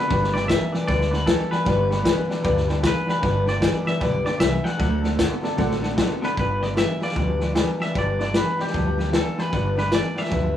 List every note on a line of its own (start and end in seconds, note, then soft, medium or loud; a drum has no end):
0.00 0.10 C4 soft
0.00 0.10 A4 medium
0.00 0.36 B4 loud
0.08 0.55 G1 medium
0.08 0.31 G2 medium
0.08 0.34 G2 medium
0.08 0.31 D3 medium
0.08 0.35 D3 medium
0.08 0.35 G3 medium
0.08 0.34 B3 medium
0.08 0.34 D4 loud
0.08 0.33 G4 medium
0.08 0.25 B4 loud
0.08 0.25 D5 medium
0.08 kick loud
0.08 snare soft
0.12 0.26 G5 loud
0.24 snare soft
0.34 0.47 G2 medium
0.34 0.48 D3 medium
0.34 0.48 G3 medium
0.34 0.49 B3 soft
0.34 0.49 D4 soft
0.34 0.49 G4 medium
0.34 0.43 B4 medium
0.34 0.48 D5 loud
0.34 0.44 D5 medium
0.34 0.44 G5 medium
0.34 snare soft
0.48 0.71 G2 medium
0.48 0.71 E3 medium
0.48 0.74 G3 medium
0.48 0.73 B3 medium
0.48 0.73 D4 medium
0.48 0.72 G4 medium
0.48 0.63 B4 medium
0.48 0.64 D5 medium
0.48 0.72 E5 loud
0.48 0.64 G5 medium
0.48 kick medium
0.48 snare loud
0.48 hi-hat pedal medium
0.72 0.87 G2 medium
0.72 0.88 E3 medium
0.72 0.88 G3 soft
0.72 0.88 B3 soft
0.72 0.89 D4 soft
0.72 0.88 G4 medium
0.72 0.82 B4 medium
0.72 0.86 D5 medium
0.72 0.83 D5 medium
0.72 0.83 G5 medium
0.72 muted upright bass stroke medium
0.72 snare soft
0.87 1.33 D2 medium
0.87 1.10 G2 medium
0.87 1.13 G2 medium
0.87 1.13 D3 medium
0.87 1.11 D3 medium
0.87 1.12 G3 medium
0.87 1.12 B3 medium
0.87 1.11 D4 medium
0.87 1.11 G4 medium
0.87 1.03 B4 loud
0.87 1.11 D5 loud
0.87 1.03 D5 medium
0.87 1.04 G5 loud
0.87 kick loud
0.87 snare soft
1.01 snare soft
1.11 1.25 G2 medium
1.11 1.26 D3 medium
1.11 1.26 G3 soft
1.11 1.27 B3 medium
1.11 1.27 D4 medium
1.11 1.27 G4 medium
1.11 1.27 B4 medium
1.11 1.21 B4 medium
1.11 1.22 D5 medium
1.11 1.22 F#5 medium
1.11 snare soft
1.26 1.49 G2 medium
1.26 1.49 E3 medium
1.26 1.52 G3 medium
1.26 1.52 B3 medium
1.26 1.51 D4 medium
1.26 1.51 G4 medium
1.26 1.52 A4 medium
1.26 1.42 B4 medium
1.26 1.42 D5 medium
1.26 1.43 E5 medium
1.26 kick medium
1.26 snare loud
1.26 hi-hat pedal medium
1.50 1.65 G2 medium
1.50 1.65 E3 medium
1.50 1.65 G3 soft
1.50 1.65 B3 soft
1.50 1.65 D4 medium
1.50 1.65 G4 soft
1.50 1.60 B4 medium
1.50 2.26 B4 medium
1.50 1.61 D5 medium
1.50 1.61 G5 medium
1.50 muted upright bass stroke medium
1.50 snare soft
1.64 2.11 G1 medium
1.64 1.90 G2 medium
1.64 1.88 G2 medium
1.64 1.90 D3 medium
1.64 1.88 D3 loud
1.64 1.91 G3 medium
1.64 1.91 B3 medium
1.64 1.90 D4 medium
1.64 1.90 G4 loud
1.64 1.80 B4 loud
1.64 1.81 D5 medium
1.64 1.81 G5 loud
1.64 kick loud
1.64 snare soft
1.89 2.03 G2 medium
1.89 2.04 D3 medium
1.89 2.04 G3 soft
1.89 2.05 B3 soft
1.89 2.05 D4 medium
1.89 2.06 G4 medium
1.89 1.99 B4 medium
1.89 2.00 D5 medium
1.89 2.00 G5 medium
1.89 snare soft
2.04 2.27 G2 medium
2.04 2.27 E3 loud
2.04 2.30 G3 medium
2.04 2.30 B3 medium
2.04 2.30 D4 medium
2.04 2.29 G4 medium
2.04 2.20 B4 medium
2.04 2.20 D5 medium
2.04 2.21 G5 medium
2.04 kick medium
2.04 snare loud
2.04 hi-hat pedal medium
2.29 2.43 G2 medium
2.29 2.44 E3 medium
2.29 2.43 G3 soft
2.29 2.44 B3 medium
2.29 2.44 D4 soft
2.29 2.44 G4 medium
2.29 2.38 B4 loud
2.29 2.39 D5 medium
2.29 2.39 G5 loud
2.29 muted upright bass stroke medium
2.29 snare soft
2.43 2.89 D2 medium
2.43 2.69 G2 medium
2.43 2.67 G2 medium
2.43 2.69 D3 medium
2.43 2.67 D3 medium
2.43 2.69 G3 loud
2.43 2.68 B3 loud
2.43 2.67 D4 loud
2.43 2.67 G4 loud
2.43 2.59 B4 loud
2.43 2.59 D5 loud
2.43 2.60 G5 loud
2.43 kick loud
2.43 snare soft
2.57 snare soft
2.68 2.82 G2 medium
2.68 2.83 D3 medium
2.68 2.82 G3 medium
2.68 2.83 B3 medium
2.68 2.84 D4 medium
2.68 2.83 G4 medium
2.68 2.77 B4 medium
2.68 2.78 D5 medium
2.68 2.79 G5 loud
2.68 snare soft
2.82 3.06 G2 medium
2.82 3.06 E3 medium
2.82 3.08 G3 medium
2.82 3.08 B3 medium
2.82 3.08 D4 medium
2.82 3.07 G4 medium
2.82 2.98 B4 medium
2.82 2.98 D5 medium
2.82 2.99 G5 medium
2.82 kick medium
2.82 snare loud
2.82 hi-hat pedal medium
2.87 3.08 B4 medium
3.07 3.21 G2 medium
3.07 3.21 E3 medium
3.07 3.22 G3 soft
3.07 3.23 B3 medium
3.07 3.23 D4 medium
3.07 3.23 G4 soft
3.07 3.16 B4 medium
3.07 3.48 B4 medium
3.07 3.17 D5 medium
3.07 3.18 G5 medium
3.07 muted upright bass stroke medium
3.07 snare soft
3.21 3.68 G1 loud
3.21 3.45 G2 medium
3.21 3.48 G2 medium
3.21 3.45 D3 medium
3.21 3.48 D3 medium
3.21 3.47 G3 medium
3.21 3.46 B3 medium
3.21 3.46 D4 medium
3.21 3.45 G4 medium
3.21 3.37 B4 medium
3.21 3.37 D5 medium
3.21 3.38 G5 loud
3.21 kick loud
3.21 snare soft
3.45 3.60 G2 medium
3.45 3.61 D3 medium
3.45 3.60 G3 soft
3.45 3.61 B3 soft
3.45 3.61 D4 medium
3.45 3.62 G4 medium
3.45 3.55 B4 medium
3.45 3.56 D5 medium
3.45 3.87 D5 medium
3.45 3.56 G5 medium
3.45 snare soft
3.60 3.84 G2 medium
3.60 3.84 E3 loud
3.60 3.86 G3 medium
3.60 3.86 B3 medium
3.60 3.85 D4 medium
3.60 3.84 G4 medium
3.60 3.76 B4 medium
3.60 3.76 D5 medium
3.60 3.77 G5 medium
3.60 kick medium
3.60 snare loud
3.60 hi-hat pedal medium
3.84 4.00 G2 medium
3.84 4.00 E3 medium
3.84 4.00 G3 soft
3.84 4.00 B3 medium
3.84 4.00 D4 medium
3.84 4.01 G4 medium
3.84 3.94 B4 medium
3.84 3.95 D5 medium
3.84 3.95 E5 medium
3.84 4.01 E5 loud
3.84 muted upright bass stroke medium
3.84 snare soft
4.00 4.22 B1 medium
4.00 4.26 G2 medium
4.00 4.23 G2 medium
4.00 4.26 D3 medium
4.00 4.24 D3 loud
4.00 4.26 G3 medium
4.00 4.26 B3 medium
4.00 4.25 D4 medium
4.00 4.24 G4 medium
4.00 4.15 B4 loud
4.00 4.25 D5 loud
4.00 4.16 D5 medium
4.00 4.16 G5 loud
4.00 kick loud
4.00 snare soft
4.24 4.39 G2 medium
4.24 4.39 D3 medium
4.24 4.38 G3 soft
4.24 4.39 B3 soft
4.24 4.40 D4 medium
4.24 4.40 G4 medium
4.24 4.34 B4 medium
4.24 4.35 D5 medium
4.24 4.40 D5 medium
4.24 4.35 G5 medium
4.24 muted upright bass stroke medium
4.24 snare soft
4.39 4.61 C2 medium
4.39 4.63 G2 medium
4.39 4.63 E3 loud
4.39 4.65 G3 medium
4.39 4.64 B3 medium
4.39 4.64 D4 medium
4.39 4.63 G4 medium
4.39 4.55 B4 medium
4.39 4.55 D5 medium
4.39 4.64 E5 loud
4.39 4.56 G5 medium
4.39 kick medium
4.39 snare loud
4.39 hi-hat pedal medium
4.63 4.78 G2 medium
4.63 4.78 E3 medium
4.63 4.79 G3 soft
4.63 4.79 B3 soft
4.63 4.79 D4 soft
4.63 4.80 G4 medium
4.63 4.73 B4 medium
4.63 4.74 D5 medium
4.63 5.97 F#5 loud
4.63 4.74 G5 medium
4.63 muted upright bass stroke medium
4.63 snare soft
4.78 5.24 D2 loud
4.78 5.02 D3 medium
4.78 5.04 D3 medium
4.78 5.04 F#3 medium
4.78 5.02 A3 loud
4.78 5.04 C4 loud
4.78 5.04 D4 loud
4.78 4.94 A4 loud
4.78 5.02 A4 loud
4.78 4.94 D5 medium
4.78 4.94 F#5 loud
4.78 kick loud
4.78 snare soft
5.03 5.18 D3 medium
5.03 5.18 A3 medium
5.03 5.17 C4 soft
5.03 5.18 D4 medium
5.03 5.12 A4 medium
5.03 5.19 A4 medium
5.03 5.13 D5 medium
5.03 5.13 F#5 medium
5.03 snare soft
5.18 5.42 D3 medium
5.18 5.43 F#3 medium
5.18 5.42 B3 loud
5.18 5.43 C4 medium
5.18 5.43 D4 medium
5.18 5.33 A4 medium
5.18 5.42 A4 medium
5.18 5.34 D5 medium
5.18 5.34 F#5 loud
5.18 kick medium
5.18 snare loud
5.18 hi-hat pedal medium
5.42 5.57 D3 medium
5.42 5.58 B3 loud
5.42 5.57 C4 medium
5.42 5.57 D4 medium
5.42 5.52 A4 loud
5.42 5.57 A4 medium
5.42 5.53 D5 medium
5.42 5.53 A5 loud
5.42 muted upright bass stroke medium
5.42 snare soft
5.57 6.03 A1 medium
5.57 5.83 D3 medium
5.57 5.80 D3 medium
5.57 5.83 F#3 medium
5.57 5.81 A3 medium
5.57 5.83 C4 medium
5.57 5.83 D4 loud
5.57 5.73 A4 loud
5.57 5.82 A4 medium
5.57 5.73 D5 loud
5.57 5.74 F#5 loud
5.57 kick loud
5.57 snare soft
5.71 snare soft
5.82 5.96 D3 medium
5.82 5.97 A3 medium
5.82 5.98 C4 medium
5.82 5.98 D4 medium
5.82 5.91 A4 medium
5.82 5.98 A4 medium
5.82 5.92 D5 medium
5.82 5.92 F#5 loud
5.82 snare soft
5.97 6.20 D3 medium
5.97 6.23 F#3 medium
5.97 6.20 B3 loud
5.97 6.23 C4 medium
5.97 6.22 D4 medium
5.97 6.12 A4 medium
5.97 6.22 A4 medium
5.97 6.13 D5 medium
5.97 6.13 F#5 loud
5.97 kick medium
5.97 snare loud
5.97 hi-hat pedal medium
6.21 6.35 D3 medium
6.21 6.36 B3 medium
6.21 6.38 C4 soft
6.21 6.38 D4 medium
6.21 6.31 A4 medium
6.21 6.37 A4 medium
6.21 6.38 B4 medium
6.21 6.32 D5 medium
6.21 6.32 F#5 loud
6.21 muted upright bass stroke medium
6.21 snare soft
6.37 6.82 G1 medium
6.37 6.59 G2 medium
6.37 6.62 G2 medium
6.37 6.59 D3 medium
6.37 6.63 D3 medium
6.37 6.63 G3 medium
6.37 6.63 B3 medium
6.37 6.63 D4 medium
6.37 6.61 G4 medium
6.37 6.52 B4 loud
6.37 6.63 B4 loud
6.37 6.52 D5 medium
6.37 6.53 G5 loud
6.37 kick loud
6.37 snare soft
6.61 6.75 G2 medium
6.61 6.75 D3 medium
6.61 6.76 G3 soft
6.61 6.77 B3 soft
6.61 6.78 D4 soft
6.61 6.77 G4 medium
6.61 6.70 B4 medium
6.61 6.71 D5 medium
6.61 6.78 D5 loud
6.61 6.71 G5 medium
6.61 snare soft
6.77 6.99 G2 medium
6.77 6.99 E3 loud
6.77 7.01 G3 medium
6.77 7.01 B3 medium
6.77 7.00 D4 medium
6.77 6.99 G4 medium
6.77 6.92 B4 medium
6.77 6.92 D5 medium
6.77 7.03 E5 loud
6.77 6.92 G5 medium
6.77 snare loud
6.77 hi-hat pedal medium
7.00 7.15 G2 medium
7.00 7.15 E3 medium
7.00 7.15 G3 soft
7.00 7.16 B3 soft
7.00 7.16 D4 soft
7.00 7.16 G4 medium
7.00 7.10 B4 medium
7.00 7.11 D5 medium
7.00 7.53 D5 medium
7.00 7.11 F5 medium
7.00 muted upright bass stroke medium
7.00 snare soft
7.09 snare soft
7.15 7.61 D2 medium
7.15 7.41 G2 medium
7.15 7.39 G2 medium
7.15 7.41 D3 medium
7.15 7.39 F3 medium
7.15 7.41 G3 medium
7.15 7.40 B3 medium
7.15 7.40 D4 medium
7.15 7.39 G4 medium
7.15 7.31 B4 medium
7.15 7.31 D5 medium
7.15 7.32 G5 medium
7.15 kick loud
7.15 snare soft
7.40 7.54 G2 medium
7.40 7.55 F3 medium
7.40 7.55 G3 soft
7.40 7.55 B3 soft
7.40 7.55 D4 medium
7.40 7.55 G4 soft
7.40 7.49 B4 medium
7.40 7.50 D5 medium
7.40 7.50 G5 medium
7.40 snare soft
7.55 7.78 G2 medium
7.55 7.78 E3 medium
7.55 7.80 G3 medium
7.55 7.80 B3 medium
7.55 7.79 D4 medium
7.55 7.79 G4 medium
7.55 7.70 B4 loud
7.55 7.71 D5 loud
7.55 7.71 G5 loud
7.55 snare loud
7.55 hi-hat pedal medium
7.80 7.93 G2 medium
7.80 7.94 E3 medium
7.80 7.94 G3 soft
7.80 7.94 B3 soft
7.80 7.95 D4 medium
7.80 7.95 G4 soft
7.80 7.89 B4 medium
7.80 7.90 D5 medium
7.80 7.96 E5 loud
7.80 7.90 G5 medium
7.80 muted upright bass stroke medium
7.80 snare soft
7.94 8.40 G1 medium
7.94 8.19 G2 medium
7.94 8.17 G2 medium
7.94 8.20 D3 medium
7.94 8.18 D3 medium
7.94 8.20 G3 medium
7.94 8.20 B3 medium
7.94 8.19 D4 medium
7.94 8.19 G4 medium
7.94 8.09 B4 medium
7.94 8.10 D5 medium
7.94 8.11 G5 loud
7.94 kick loud
7.94 snare soft
7.99 8.20 D5 loud
8.20 8.33 G2 medium
8.20 8.33 D3 medium
8.20 8.33 G3 soft
8.20 8.34 B3 soft
8.20 8.34 D4 soft
8.20 8.34 G4 medium
8.20 8.28 B4 medium
8.20 8.29 D5 medium
8.20 8.34 D5 loud
8.20 8.29 E5 medium
8.20 snare soft
8.34 8.56 G2 medium
8.34 8.57 E3 medium
8.34 8.59 G3 medium
8.34 8.59 B3 medium
8.34 8.58 D4 medium
8.34 8.57 G4 medium
8.34 8.49 B4 medium
8.34 8.61 B4 medium
8.34 8.50 D5 medium
8.34 8.50 G5 medium
8.34 snare loud
8.34 hi-hat pedal medium
8.58 8.72 G2 medium
8.58 8.72 E3 medium
8.58 8.73 G3 soft
8.58 8.73 B3 soft
8.58 8.73 D4 soft
8.58 8.74 G4 soft
8.58 9.16 G4 medium
8.58 8.67 B4 medium
8.58 8.68 D5 medium
8.58 8.68 G5 medium
8.58 muted upright bass stroke medium
8.58 snare soft
8.67 snare soft
8.73 9.19 D2 medium
8.73 8.96 G2 medium
8.73 8.98 G2 medium
8.73 8.98 D3 medium
8.73 8.96 F3 medium
8.73 8.99 G3 medium
8.73 8.98 B3 medium
8.73 8.98 D4 medium
8.73 8.97 G4 medium
8.73 8.89 B4 medium
8.73 8.89 D5 medium
8.73 8.90 A5 medium
8.73 kick loud
8.73 snare soft
8.98 9.11 G2 medium
8.98 9.12 F3 medium
8.98 9.12 G3 soft
8.98 9.13 B3 soft
8.98 9.13 D4 medium
8.98 9.13 G4 medium
8.98 9.07 B4 medium
8.98 9.08 D5 medium
8.98 9.08 G5 medium
8.98 snare soft
9.12 9.35 G2 medium
9.12 9.35 E3 medium
9.12 9.38 G3 medium
9.12 9.38 B3 medium
9.12 9.37 D4 medium
9.12 9.37 G4 medium
9.12 9.40 A4 medium
9.12 9.28 B4 medium
9.12 9.28 D5 medium
9.12 9.29 G5 loud
9.12 snare loud
9.12 hi-hat pedal medium
9.37 9.51 G2 medium
9.37 9.51 E3 medium
9.37 9.52 G3 soft
9.37 9.52 B3 soft
9.37 9.52 D4 soft
9.37 9.53 G4 soft
9.37 9.47 B4 medium
9.37 9.78 B4 medium
9.37 9.47 D5 medium
9.37 9.48 G5 medium
9.37 muted upright bass stroke medium
9.37 snare soft
9.52 9.98 G1 medium
9.52 9.75 G2 medium
9.52 9.77 G2 medium
9.52 9.75 D3 loud
9.52 9.78 D3 medium
9.52 9.78 G3 medium
9.52 9.77 B3 loud
9.52 9.76 D4 medium
9.52 9.75 G4 medium
9.52 9.67 B4 medium
9.52 9.67 D5 medium
9.52 9.68 G5 loud
9.52 kick loud
9.52 snare soft
9.75 9.90 G2 medium
9.75 9.91 D3 medium
9.75 9.90 G3 soft
9.75 9.91 B3 soft
9.75 9.91 D4 medium
9.75 9.92 G4 medium
9.75 9.85 B4 medium
9.75 9.92 B4 medium
9.75 9.86 D5 medium
9.75 9.86 G5 loud
9.75 snare soft
9.91 10.14 G2 medium
9.91 10.14 E3 medium
9.91 10.16 G3 medium
9.91 10.17 B3 medium
9.91 10.16 D4 medium
9.91 10.15 G4 medium
9.91 10.06 B4 medium
9.91 10.07 D5 medium
9.91 10.18 D5 loud
9.91 10.07 E5 medium
9.91 snare loud
9.91 hi-hat pedal medium
10.15 10.29 G2 medium
10.15 10.30 E3 medium
10.15 10.31 G3 soft
10.15 10.31 B3 soft
10.15 10.31 D4 soft
10.15 10.31 G4 soft
10.15 10.25 B4 medium
10.15 10.25 D5 medium
10.15 10.57 E5 loud
10.15 10.26 G5 medium
10.15 muted upright bass stroke medium
10.15 snare soft
10.24 snare soft
10.30 10.57 D2 medium
10.30 10.53 G2 medium
10.30 10.56 G2 medium
10.30 10.56 D3 medium
10.30 10.53 F3 medium
10.30 10.56 G3 medium
10.30 10.56 B3 medium
10.30 10.56 D4 loud
10.30 10.55 G4 medium
10.30 10.45 B4 medium
10.30 10.46 D5 medium
10.30 10.46 G5 medium
10.30 kick loud
10.30 snare soft